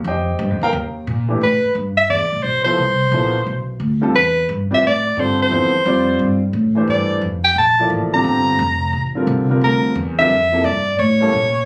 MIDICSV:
0, 0, Header, 1, 5, 480
1, 0, Start_track
1, 0, Tempo, 341880
1, 70, Time_signature, 4, 2, 24, 8
1, 16359, End_track
2, 0, Start_track
2, 0, Title_t, "Soprano saxophone"
2, 0, Program_c, 0, 64
2, 2012, Note_on_c, 0, 71, 86
2, 2447, Note_off_c, 0, 71, 0
2, 2771, Note_on_c, 0, 76, 93
2, 2932, Note_off_c, 0, 76, 0
2, 2950, Note_on_c, 0, 74, 88
2, 3413, Note_on_c, 0, 72, 85
2, 3434, Note_off_c, 0, 74, 0
2, 3704, Note_off_c, 0, 72, 0
2, 3712, Note_on_c, 0, 72, 85
2, 5108, Note_off_c, 0, 72, 0
2, 5837, Note_on_c, 0, 71, 95
2, 6278, Note_off_c, 0, 71, 0
2, 6658, Note_on_c, 0, 76, 96
2, 6796, Note_off_c, 0, 76, 0
2, 6833, Note_on_c, 0, 74, 94
2, 7306, Note_on_c, 0, 72, 81
2, 7327, Note_off_c, 0, 74, 0
2, 7596, Note_off_c, 0, 72, 0
2, 7616, Note_on_c, 0, 72, 93
2, 8980, Note_off_c, 0, 72, 0
2, 9687, Note_on_c, 0, 74, 82
2, 10124, Note_off_c, 0, 74, 0
2, 10452, Note_on_c, 0, 79, 85
2, 10612, Note_off_c, 0, 79, 0
2, 10643, Note_on_c, 0, 81, 98
2, 11082, Note_off_c, 0, 81, 0
2, 11432, Note_on_c, 0, 82, 102
2, 12808, Note_off_c, 0, 82, 0
2, 13536, Note_on_c, 0, 70, 95
2, 13969, Note_off_c, 0, 70, 0
2, 14304, Note_on_c, 0, 76, 109
2, 14945, Note_on_c, 0, 74, 102
2, 14966, Note_off_c, 0, 76, 0
2, 15427, Note_off_c, 0, 74, 0
2, 15435, Note_on_c, 0, 73, 99
2, 16359, Note_off_c, 0, 73, 0
2, 16359, End_track
3, 0, Start_track
3, 0, Title_t, "Grand piano"
3, 0, Program_c, 1, 0
3, 104, Note_on_c, 1, 67, 58
3, 104, Note_on_c, 1, 72, 61
3, 104, Note_on_c, 1, 79, 70
3, 108, Note_on_c, 1, 75, 58
3, 822, Note_off_c, 1, 67, 0
3, 822, Note_off_c, 1, 72, 0
3, 822, Note_off_c, 1, 79, 0
3, 824, Note_off_c, 1, 75, 0
3, 884, Note_on_c, 1, 77, 80
3, 884, Note_on_c, 1, 82, 100
3, 897, Note_on_c, 1, 70, 75
3, 898, Note_on_c, 1, 79, 81
3, 978, Note_off_c, 1, 77, 0
3, 978, Note_off_c, 1, 82, 0
3, 988, Note_off_c, 1, 70, 0
3, 989, Note_off_c, 1, 79, 0
3, 1804, Note_on_c, 1, 52, 61
3, 1806, Note_on_c, 1, 57, 52
3, 1824, Note_on_c, 1, 62, 52
3, 1824, Note_on_c, 1, 67, 64
3, 1964, Note_off_c, 1, 52, 0
3, 1965, Note_off_c, 1, 57, 0
3, 1974, Note_off_c, 1, 62, 0
3, 1974, Note_off_c, 1, 67, 0
3, 3719, Note_on_c, 1, 53, 67
3, 3725, Note_on_c, 1, 59, 57
3, 3739, Note_on_c, 1, 64, 58
3, 3748, Note_on_c, 1, 69, 58
3, 3750, Note_on_c, 1, 72, 68
3, 3881, Note_off_c, 1, 53, 0
3, 3884, Note_off_c, 1, 59, 0
3, 3891, Note_off_c, 1, 64, 0
3, 3895, Note_off_c, 1, 69, 0
3, 3896, Note_off_c, 1, 72, 0
3, 4392, Note_on_c, 1, 59, 55
3, 4393, Note_on_c, 1, 53, 63
3, 4400, Note_on_c, 1, 69, 52
3, 4407, Note_on_c, 1, 64, 57
3, 4415, Note_on_c, 1, 72, 65
3, 4668, Note_off_c, 1, 53, 0
3, 4668, Note_off_c, 1, 59, 0
3, 4672, Note_off_c, 1, 69, 0
3, 4675, Note_off_c, 1, 64, 0
3, 4680, Note_off_c, 1, 72, 0
3, 5636, Note_on_c, 1, 50, 69
3, 5643, Note_on_c, 1, 55, 70
3, 5651, Note_on_c, 1, 60, 64
3, 5658, Note_on_c, 1, 65, 65
3, 5659, Note_on_c, 1, 69, 80
3, 5799, Note_off_c, 1, 50, 0
3, 5802, Note_off_c, 1, 55, 0
3, 5806, Note_off_c, 1, 60, 0
3, 5810, Note_off_c, 1, 65, 0
3, 5811, Note_off_c, 1, 69, 0
3, 6608, Note_on_c, 1, 55, 64
3, 6609, Note_on_c, 1, 60, 68
3, 6616, Note_on_c, 1, 71, 61
3, 6625, Note_on_c, 1, 65, 60
3, 6628, Note_on_c, 1, 74, 79
3, 6765, Note_off_c, 1, 55, 0
3, 6765, Note_off_c, 1, 60, 0
3, 6769, Note_off_c, 1, 71, 0
3, 6773, Note_off_c, 1, 65, 0
3, 6775, Note_off_c, 1, 74, 0
3, 7261, Note_on_c, 1, 50, 55
3, 7263, Note_on_c, 1, 55, 50
3, 7270, Note_on_c, 1, 60, 54
3, 7284, Note_on_c, 1, 69, 62
3, 7285, Note_on_c, 1, 65, 50
3, 7718, Note_on_c, 1, 53, 56
3, 7720, Note_off_c, 1, 69, 0
3, 7728, Note_on_c, 1, 59, 56
3, 7735, Note_on_c, 1, 64, 55
3, 7741, Note_on_c, 1, 69, 53
3, 7750, Note_on_c, 1, 72, 69
3, 7991, Note_off_c, 1, 50, 0
3, 7992, Note_off_c, 1, 55, 0
3, 7995, Note_off_c, 1, 60, 0
3, 8003, Note_off_c, 1, 65, 0
3, 8011, Note_off_c, 1, 53, 0
3, 8015, Note_off_c, 1, 59, 0
3, 8019, Note_off_c, 1, 64, 0
3, 8022, Note_off_c, 1, 69, 0
3, 8026, Note_off_c, 1, 72, 0
3, 8216, Note_on_c, 1, 55, 68
3, 8223, Note_on_c, 1, 60, 68
3, 8227, Note_on_c, 1, 65, 63
3, 8237, Note_on_c, 1, 72, 61
3, 8244, Note_on_c, 1, 74, 80
3, 8949, Note_off_c, 1, 55, 0
3, 8952, Note_off_c, 1, 60, 0
3, 8954, Note_off_c, 1, 65, 0
3, 8959, Note_off_c, 1, 72, 0
3, 8963, Note_off_c, 1, 74, 0
3, 9478, Note_on_c, 1, 52, 63
3, 9494, Note_on_c, 1, 62, 56
3, 9495, Note_on_c, 1, 57, 54
3, 9501, Note_on_c, 1, 67, 52
3, 9511, Note_on_c, 1, 72, 68
3, 10103, Note_off_c, 1, 52, 0
3, 10111, Note_off_c, 1, 62, 0
3, 10112, Note_off_c, 1, 57, 0
3, 10115, Note_off_c, 1, 67, 0
3, 10119, Note_off_c, 1, 72, 0
3, 10946, Note_on_c, 1, 53, 73
3, 10950, Note_on_c, 1, 58, 64
3, 10955, Note_on_c, 1, 64, 65
3, 10964, Note_on_c, 1, 69, 65
3, 10968, Note_on_c, 1, 74, 75
3, 11390, Note_off_c, 1, 53, 0
3, 11392, Note_off_c, 1, 58, 0
3, 11394, Note_off_c, 1, 64, 0
3, 11399, Note_off_c, 1, 69, 0
3, 11401, Note_off_c, 1, 74, 0
3, 11415, Note_on_c, 1, 50, 68
3, 11421, Note_on_c, 1, 55, 59
3, 11426, Note_on_c, 1, 60, 64
3, 11436, Note_on_c, 1, 65, 60
3, 11444, Note_on_c, 1, 67, 75
3, 12032, Note_off_c, 1, 50, 0
3, 12035, Note_off_c, 1, 55, 0
3, 12038, Note_off_c, 1, 60, 0
3, 12042, Note_off_c, 1, 65, 0
3, 12047, Note_off_c, 1, 67, 0
3, 12848, Note_on_c, 1, 50, 62
3, 12856, Note_on_c, 1, 60, 55
3, 12857, Note_on_c, 1, 55, 58
3, 12866, Note_on_c, 1, 65, 56
3, 12876, Note_on_c, 1, 70, 68
3, 13302, Note_off_c, 1, 50, 0
3, 13305, Note_off_c, 1, 60, 0
3, 13306, Note_off_c, 1, 55, 0
3, 13311, Note_off_c, 1, 65, 0
3, 13316, Note_off_c, 1, 70, 0
3, 13325, Note_on_c, 1, 50, 61
3, 13338, Note_on_c, 1, 55, 59
3, 13343, Note_on_c, 1, 60, 57
3, 13353, Note_on_c, 1, 65, 58
3, 13354, Note_on_c, 1, 70, 74
3, 13947, Note_off_c, 1, 50, 0
3, 13954, Note_off_c, 1, 55, 0
3, 13957, Note_off_c, 1, 60, 0
3, 13961, Note_off_c, 1, 65, 0
3, 13962, Note_off_c, 1, 70, 0
3, 14308, Note_on_c, 1, 50, 78
3, 14310, Note_on_c, 1, 55, 68
3, 14310, Note_on_c, 1, 60, 67
3, 14322, Note_on_c, 1, 65, 69
3, 14324, Note_on_c, 1, 70, 81
3, 14456, Note_off_c, 1, 50, 0
3, 14457, Note_off_c, 1, 55, 0
3, 14457, Note_off_c, 1, 60, 0
3, 14463, Note_off_c, 1, 65, 0
3, 14464, Note_off_c, 1, 70, 0
3, 14770, Note_on_c, 1, 48, 71
3, 14776, Note_on_c, 1, 53, 67
3, 14784, Note_on_c, 1, 58, 70
3, 14794, Note_on_c, 1, 64, 63
3, 14802, Note_on_c, 1, 69, 85
3, 14927, Note_off_c, 1, 48, 0
3, 14930, Note_off_c, 1, 53, 0
3, 14934, Note_off_c, 1, 58, 0
3, 14939, Note_off_c, 1, 64, 0
3, 14943, Note_off_c, 1, 69, 0
3, 15730, Note_on_c, 1, 55, 76
3, 15735, Note_on_c, 1, 58, 67
3, 15742, Note_on_c, 1, 61, 72
3, 15746, Note_on_c, 1, 64, 64
3, 15755, Note_on_c, 1, 69, 85
3, 15888, Note_off_c, 1, 55, 0
3, 15890, Note_off_c, 1, 58, 0
3, 15893, Note_off_c, 1, 61, 0
3, 15896, Note_off_c, 1, 64, 0
3, 15900, Note_off_c, 1, 69, 0
3, 16359, End_track
4, 0, Start_track
4, 0, Title_t, "Upright bass"
4, 0, Program_c, 2, 32
4, 60, Note_on_c, 2, 41, 93
4, 530, Note_off_c, 2, 41, 0
4, 544, Note_on_c, 2, 43, 93
4, 707, Note_off_c, 2, 43, 0
4, 707, Note_on_c, 2, 41, 58
4, 854, Note_off_c, 2, 41, 0
4, 862, Note_on_c, 2, 39, 69
4, 1014, Note_off_c, 2, 39, 0
4, 1021, Note_on_c, 2, 39, 88
4, 1490, Note_off_c, 2, 39, 0
4, 1505, Note_on_c, 2, 46, 86
4, 1972, Note_off_c, 2, 46, 0
4, 1984, Note_on_c, 2, 45, 69
4, 2273, Note_off_c, 2, 45, 0
4, 2456, Note_on_c, 2, 43, 81
4, 2927, Note_off_c, 2, 43, 0
4, 2944, Note_on_c, 2, 40, 83
4, 3100, Note_on_c, 2, 36, 47
4, 3121, Note_off_c, 2, 40, 0
4, 3252, Note_off_c, 2, 36, 0
4, 3261, Note_on_c, 2, 33, 64
4, 3412, Note_off_c, 2, 33, 0
4, 3426, Note_on_c, 2, 35, 74
4, 3892, Note_off_c, 2, 35, 0
4, 3902, Note_on_c, 2, 36, 77
4, 4366, Note_off_c, 2, 36, 0
4, 4375, Note_on_c, 2, 34, 93
4, 4846, Note_off_c, 2, 34, 0
4, 4864, Note_on_c, 2, 35, 76
4, 5322, Note_off_c, 2, 35, 0
4, 5330, Note_on_c, 2, 38, 83
4, 5803, Note_off_c, 2, 38, 0
4, 5821, Note_on_c, 2, 40, 79
4, 6289, Note_off_c, 2, 40, 0
4, 6301, Note_on_c, 2, 43, 93
4, 6591, Note_off_c, 2, 43, 0
4, 6781, Note_on_c, 2, 45, 76
4, 7249, Note_off_c, 2, 45, 0
4, 7255, Note_on_c, 2, 43, 86
4, 7726, Note_off_c, 2, 43, 0
4, 7740, Note_on_c, 2, 40, 77
4, 8208, Note_off_c, 2, 40, 0
4, 8222, Note_on_c, 2, 41, 91
4, 8684, Note_off_c, 2, 41, 0
4, 8692, Note_on_c, 2, 43, 82
4, 9164, Note_off_c, 2, 43, 0
4, 9171, Note_on_c, 2, 45, 87
4, 9644, Note_off_c, 2, 45, 0
4, 9652, Note_on_c, 2, 43, 77
4, 10119, Note_off_c, 2, 43, 0
4, 10128, Note_on_c, 2, 41, 89
4, 10599, Note_off_c, 2, 41, 0
4, 10608, Note_on_c, 2, 34, 75
4, 11079, Note_off_c, 2, 34, 0
4, 11088, Note_on_c, 2, 33, 83
4, 11558, Note_off_c, 2, 33, 0
4, 11566, Note_on_c, 2, 31, 85
4, 12042, Note_off_c, 2, 31, 0
4, 12056, Note_on_c, 2, 29, 99
4, 12522, Note_off_c, 2, 29, 0
4, 12531, Note_on_c, 2, 33, 80
4, 13004, Note_off_c, 2, 33, 0
4, 13014, Note_on_c, 2, 36, 90
4, 13486, Note_off_c, 2, 36, 0
4, 13496, Note_on_c, 2, 38, 78
4, 13967, Note_off_c, 2, 38, 0
4, 13974, Note_on_c, 2, 40, 99
4, 14446, Note_off_c, 2, 40, 0
4, 14459, Note_on_c, 2, 41, 82
4, 14929, Note_off_c, 2, 41, 0
4, 14938, Note_on_c, 2, 43, 93
4, 15409, Note_off_c, 2, 43, 0
4, 15423, Note_on_c, 2, 45, 89
4, 15892, Note_off_c, 2, 45, 0
4, 15905, Note_on_c, 2, 46, 92
4, 16359, Note_off_c, 2, 46, 0
4, 16359, End_track
5, 0, Start_track
5, 0, Title_t, "Muted upright bass strokes"
5, 2303, Note_on_c, 9, 29, 36
5, 2443, Note_off_c, 9, 29, 0
5, 6619, Note_on_c, 9, 29, 40
5, 6760, Note_off_c, 9, 29, 0
5, 16359, End_track
0, 0, End_of_file